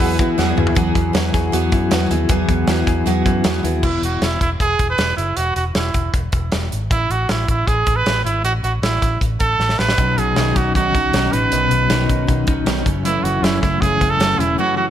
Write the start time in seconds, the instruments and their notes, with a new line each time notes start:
Already playing: clean electric guitar E3 E4 G#4, analog synth pad G#4 F#5 E6, trumpet B4
0.00 fingered electric bass E2, steel-string acoustic guitar F#3 B3 F#4 G#4, open hi-hat
0.18 fingered electric bass E3, steel-string acoustic guitar B3 F#4 G#4, clean electric guitar E4, kick, hi-hat pedal, open hi-hat
0.38 fingered electric bass E2, steel-string acoustic guitar E3 F#3 B3 F#4 G#4, snare
0.57 fingered electric bass D#2, steel-string acoustic guitar B3 F#4 G#4, clean electric guitar E4, mid tom
0.67 floor tom
0.75 fingered electric bass E2, steel-string acoustic guitar E3 F#3 B3 F#4 G#4, kick, closed hi-hat
0.95 fingered electric bass E2, clean electric guitar B3, kick, closed hi-hat
1.13 fingered electric bass E2, steel-string acoustic guitar F#3 B3 F#4 G#4, clean electric guitar E4, snare, closed hi-hat
1.33 fingered electric bass E2, clean electric guitar G#4, kick, snare, closed hi-hat
1.52 fingered electric bass E2, steel-string acoustic guitar E3 F#3 B3 F#4 G#4, closed hi-hat
1.72 fingered electric bass F#2, clean electric guitar E4, kick, closed hi-hat
1.91 fingered electric bass E2, steel-string acoustic guitar F#3 B3 F#4 G#4, snare, closed hi-hat
2.11 fingered electric bass D#2, steel-string acoustic guitar B3 F#4 G#4, clean electric guitar E4, closed hi-hat
2.29 fingered electric bass E2, steel-string acoustic guitar E3 F#3 B3 F#4 G#4, kick, closed hi-hat
2.48 fingered electric bass E2, clean electric guitar B3, kick, closed hi-hat
2.67 fingered electric bass E2, steel-string acoustic guitar F#3 B3 F#4 G#4, clean electric guitar E4, snare, closed hi-hat
2.87 fingered electric bass E2, clean electric guitar G#4, kick, closed hi-hat
3.06 fingered electric bass E2, steel-string acoustic guitar E3 F#3 B3 F#4 G#4, closed hi-hat
3.26 fingered electric bass F#2, clean electric guitar E4, kick, closed hi-hat
3.44 fingered electric bass E2, steel-string acoustic guitar F#3 B3 F#4 G#4, snare, closed hi-hat
3.63 fingered electric bass D#2, steel-string acoustic guitar B3 F#4 G#4, clean electric guitar E4, closed hi-hat
3.83 fingered electric bass E1, trumpet E4, kick, crash
4.02 fingered electric bass E1, trumpet F#4, closed hi-hat
4.21 fingered electric bass E1, trumpet E4, snare, closed hi-hat
4.41 fingered electric bass E1, trumpet E4, kick, closed hi-hat
4.60 fingered electric bass E1, trumpet G#4, kick, closed hi-hat
4.79 fingered electric bass E1, kick, closed hi-hat
4.90 trumpet B4
4.98 fingered electric bass E1, snare, closed hi-hat
5.17 fingered electric bass F#1, trumpet E4, closed hi-hat
5.37 fingered electric bass E1, trumpet F#4, closed hi-hat
5.56 fingered electric bass E1, trumpet F#4, closed hi-hat
5.75 fingered electric bass E1, trumpet E4, snare, closed hi-hat
5.94 fingered electric bass E1, kick, closed hi-hat
6.14 fingered electric bass E1, kick, closed hi-hat
6.32 fingered electric bass E1, kick, closed hi-hat
6.52 fingered electric bass E1, snare, closed hi-hat
6.72 fingered electric bass G#1, closed hi-hat
6.91 fingered electric bass A1, trumpet E4, kick, closed hi-hat
7.10 fingered electric bass A1, trumpet F#4, closed hi-hat
7.29 fingered electric bass A1, trumpet E4, snare, closed hi-hat
7.48 fingered electric bass A1, trumpet E4, kick, closed hi-hat
7.67 fingered electric bass A1, trumpet G#4, kick, closed hi-hat
7.87 fingered electric bass A1, kick, closed hi-hat
7.96 trumpet B4
8.06 fingered electric bass A1, snare, closed hi-hat
8.25 fingered electric bass G#1, trumpet E4, closed hi-hat
8.44 fingered electric bass A1, trumpet F#4, closed hi-hat
8.63 fingered electric bass A1, trumpet F#4, closed hi-hat
8.82 fingered electric bass A1, trumpet E4, snare, closed hi-hat
9.02 fingered electric bass A1, kick, snare, closed hi-hat
9.21 fingered electric bass A1, kick, closed hi-hat
9.40 fingered electric bass A1, trumpet A4, kick, closed hi-hat
9.59 fingered electric bass A1, snare
9.69 snare
9.79 fingered electric bass A1, trumpet B4, snare
9.89 snare
9.97 fingered electric bass B1, steel-string acoustic guitar B2 D#3 F#3 C#4 D#4, kick, closed hi-hat
10.18 fingered electric bass B1, clean electric guitar F#3, trumpet G#4, closed hi-hat
10.36 fingered electric bass B1, steel-string acoustic guitar B2 D#3 F#3 C#4 D#4, snare, closed hi-hat
10.55 fingered electric bass B1, clean electric guitar C#4, trumpet F#4, kick, snare, closed hi-hat
10.75 fingered electric bass B1, steel-string acoustic guitar D#3 F#3 C#4 D#4, trumpet F#4, kick, closed hi-hat
10.94 fingered electric bass B1, steel-string acoustic guitar F#3 C#4 D#4, kick, closed hi-hat
11.13 fingered electric bass B1, steel-string acoustic guitar B2 D#3 F#3 C#4 D#4, snare, closed hi-hat
11.32 fingered electric bass A1, steel-string acoustic guitar F#3 C#4 D#4, trumpet B4, closed hi-hat
11.51 fingered electric bass B1, steel-string acoustic guitar B2 D#3 F#3 C#4 D#4, closed hi-hat
11.71 fingered electric bass B1, clean electric guitar F#3, closed hi-hat
11.90 fingered electric bass B1, steel-string acoustic guitar B2 D#3 F#3 C#4 D#4, snare, closed hi-hat
12.09 fingered electric bass B1, clean electric guitar C#4, kick, closed hi-hat
12.27 fingered electric bass B1, steel-string acoustic guitar D#3 F#3 C#4 D#4, kick, closed hi-hat
12.47 fingered electric bass B1, steel-string acoustic guitar F#3 C#4 D#4, kick, closed hi-hat
12.66 fingered electric bass B1, steel-string acoustic guitar B2 D#3 F#3 C#4 D#4, snare, closed hi-hat
12.85 fingered electric bass F#1, clean electric guitar F#2, steel-string acoustic guitar E3 A3 C#4, kick, closed hi-hat
13.05 steel-string acoustic guitar F#2 C#3 E3 A3 C#4, trumpet E4, closed hi-hat
13.23 fingered electric bass F#1, clean electric guitar E3, trumpet F#4, closed hi-hat
13.42 fingered electric bass F#1, steel-string acoustic guitar F#2 C#3 E3 A3 C#4, trumpet E4, snare, closed hi-hat
13.61 fingered electric bass F#1, clean electric guitar A3, trumpet E4, kick, snare, closed hi-hat
13.81 fingered electric bass F#1, steel-string acoustic guitar C#3 E3 A3 C#4, trumpet G#4, kick, closed hi-hat
14.00 fingered electric bass F#1, steel-string acoustic guitar E3 A3 C#4, clean electric guitar B3, kick, closed hi-hat
14.10 clean electric guitar C#4, trumpet A4
14.19 fingered electric bass F#1, steel-string acoustic guitar F#2 C#3 E3 A3 C#4, snare, closed hi-hat
14.39 fingered electric bass E1, steel-string acoustic guitar E3 A3 C#4, trumpet E4, closed hi-hat
14.58 steel-string acoustic guitar F#2 C#3 E3 A3 C#4, trumpet F#4
14.77 clean electric guitar E3, trumpet F#4